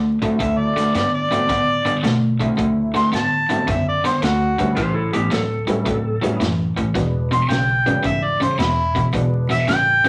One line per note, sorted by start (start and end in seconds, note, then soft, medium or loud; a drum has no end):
0.00 0.27 D2 medium
0.00 0.18 D3 medium
0.00 0.18 A3 medium
0.21 0.38 D3 medium
0.21 0.91 F#3 medium
0.21 0.91 A3 medium
0.21 0.39 A3 medium
0.21 0.91 C4 medium
0.21 0.91 E4 medium
0.21 kick medium
0.21 closed hi-hat soft
0.39 0.82 D2 medium
0.39 0.73 D3 medium
0.39 0.73 A3 medium
0.39 0.59 E5 medium
0.39 kick medium
0.39 closed hi-hat medium
0.58 0.93 D5 medium
0.76 0.93 D3 medium
0.76 0.93 A3 medium
0.76 snare soft
0.76 closed hi-hat medium
0.95 1.36 G2 medium
0.95 1.28 D3 medium
0.95 1.28 B3 medium
0.95 1.13 D5 medium
0.95 snare medium
0.95 closed hi-hat medium
1.14 2.19 D5 medium
1.31 1.47 D3 medium
1.31 1.47 F#3 medium
1.31 1.47 A3 medium
1.31 1.47 B3 medium
1.31 1.48 C4 medium
1.31 1.48 E4 medium
1.31 closed hi-hat medium
1.49 1.91 A2 medium
1.49 1.82 D3 medium
1.49 1.82 B3 medium
1.49 kick medium
1.49 snare soft
1.49 closed hi-hat medium
1.85 2.02 D3 medium
1.85 2.02 B3 medium
1.85 closed hi-hat medium
2.03 2.45 B2 medium
2.03 2.36 D3 medium
2.03 2.37 A3 medium
2.03 snare medium
2.03 closed hi-hat medium
2.40 2.56 D3 medium
2.40 3.10 F#3 medium
2.40 2.57 A3 medium
2.40 3.10 A3 medium
2.40 3.10 C4 medium
2.40 3.10 E4 medium
2.40 kick medium
2.40 closed hi-hat soft
2.57 3.00 D2 medium
2.57 2.91 D3 medium
2.57 2.91 A3 medium
2.57 kick loud
2.57 closed hi-hat medium
2.94 3.11 D3 medium
2.94 3.11 A3 medium
2.94 3.13 C6 loud
2.94 snare soft
2.94 closed hi-hat medium
3.12 3.54 A2 medium
3.12 3.45 D3 medium
3.12 3.46 B3 medium
3.12 3.67 A5 medium
3.12 snare medium
3.12 closed hi-hat medium
3.49 3.66 D3 medium
3.49 3.66 F#3 medium
3.49 3.66 A3 medium
3.49 3.66 B3 medium
3.49 3.66 C4 medium
3.49 3.66 E4 medium
3.49 closed hi-hat medium
3.67 4.09 F#2 medium
3.67 4.00 D3 medium
3.67 4.01 B3 medium
3.67 3.87 E5 medium
3.67 kick loud
3.67 snare soft
3.67 closed hi-hat medium
3.88 4.05 D5 medium
4.04 4.20 D3 medium
4.04 4.21 B3 medium
4.04 4.23 C5 medium
4.04 snare soft
4.04 closed hi-hat medium
4.22 4.64 D2 medium
4.22 4.55 D3 medium
4.22 4.55 A3 medium
4.22 4.76 F#4 medium
4.22 snare loud
4.22 closed hi-hat medium
4.58 4.75 D3 medium
4.58 4.75 G3 medium
4.58 4.75 A3 medium
4.58 4.75 B3 medium
4.58 4.75 C#4 medium
4.58 4.76 E4 medium
4.58 kick medium
4.58 closed hi-hat medium
4.76 5.18 A1 medium
4.76 5.10 A2 medium
4.76 5.10 E3 medium
4.76 4.94 G4 medium
4.76 4.94 C5 medium
4.76 kick medium
4.76 snare soft
4.76 closed hi-hat medium
4.94 5.11 E4 medium
4.94 5.12 A4 medium
5.13 5.29 A2 medium
5.13 5.30 E3 medium
5.13 5.30 B3 medium
5.13 5.31 G4 medium
5.13 closed hi-hat medium
5.30 5.73 D2 medium
5.30 5.64 A2 medium
5.30 5.64 F#3 medium
5.30 6.38 A4 medium
5.30 snare loud
5.30 closed hi-hat medium
5.67 5.84 A2 medium
5.67 5.84 F#3 medium
5.67 5.84 G3 medium
5.67 5.84 B3 medium
5.67 5.84 C#4 medium
5.67 5.84 E4 medium
5.67 closed hi-hat medium
5.86 6.28 E2 medium
5.86 6.19 A2 medium
5.86 6.19 F#3 medium
5.86 kick loud
5.86 closed hi-hat medium
6.21 6.38 A2 medium
6.21 6.39 F#3 medium
6.21 6.39 G3 medium
6.21 6.39 B3 medium
6.21 6.39 C#4 medium
6.21 6.39 E4 medium
6.21 closed hi-hat medium
6.40 6.82 F#2 medium
6.40 6.73 A2 medium
6.40 6.73 E3 medium
6.40 snare medium
6.40 closed hi-hat medium
6.76 6.93 A2 medium
6.76 6.93 E3 medium
6.76 kick medium
6.76 closed hi-hat medium
6.95 7.37 E1 medium
6.95 7.28 E2 medium
6.95 7.28 B2 medium
6.95 7.28 F#3 soft
6.95 7.28 G#3 soft
6.95 7.28 B3 soft
6.95 7.28 D4 medium
6.95 kick medium
6.95 snare soft
6.95 closed hi-hat medium
7.31 7.48 E2 medium
7.31 7.48 B2 medium
7.31 7.52 C6 medium
7.31 closed hi-hat soft
7.49 7.91 B1 medium
7.49 7.82 E2 medium
7.49 7.83 C#3 medium
7.49 8.03 G5 medium
7.49 snare medium
7.49 closed hi-hat medium
7.85 8.01 E2 medium
7.85 8.02 C#3 medium
7.85 8.02 F#3 medium
7.85 8.02 G#3 medium
7.85 8.02 B3 medium
7.85 8.02 D4 medium
7.85 closed hi-hat soft
8.03 8.46 G#1 medium
8.03 8.37 E2 medium
8.03 8.37 C#3 medium
8.03 8.26 E5 medium
8.03 kick loud
8.03 closed hi-hat medium
8.24 8.41 D5 medium
8.40 8.57 E2 medium
8.40 8.57 C#3 medium
8.40 8.58 C5 medium
8.40 closed hi-hat medium
8.58 9.00 E1 medium
8.58 8.91 E2 medium
8.58 8.92 B2 medium
8.58 9.12 E4 medium
8.58 snare loud
8.58 closed hi-hat medium
8.95 9.11 E2 medium
8.95 9.12 B2 medium
8.95 kick medium
8.95 closed hi-hat soft
9.13 9.55 E1 medium
9.13 9.46 E2 medium
9.13 9.46 B2 medium
9.13 9.46 F#3 medium
9.13 9.47 G#3 medium
9.13 9.47 B3 medium
9.13 9.47 D4 medium
9.13 kick medium
9.13 closed hi-hat medium
9.49 9.66 E2 medium
9.49 9.66 B2 medium
9.49 9.68 E5 medium
9.49 snare soft
9.49 closed hi-hat medium
9.67 10.09 A1 medium
9.67 10.01 E2 medium
9.67 10.01 C#3 medium
9.67 10.09 G5 loud
9.67 snare medium
9.67 closed hi-hat medium
10.04 10.09 E2 medium
10.04 10.09 C#3 medium
10.04 10.09 F#3 medium
10.04 10.09 G#3 soft
10.04 10.09 B3 medium
10.04 10.09 C#4 medium
10.04 closed hi-hat medium